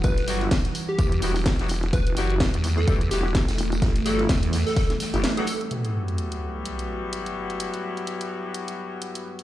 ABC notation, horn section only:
X:1
M:4/4
L:1/16
Q:"Swing 16ths" 1/4=127
K:Em
V:1 name="Horn section"
z2 [F,G,B,EF] z6 z [F,G,B,EF] z2 [F,G,B,EF] z2 | z2 [F,G,B,EF] z4 z [F,G,B,EF] z [F,G,B,EF] z4 z | z2 [F,G,B,EF] z8 [F,G,B,EF] z [F,G,B,EF] z2 | [F,G,B,EF]16- |
[F,G,B,EF]16 |]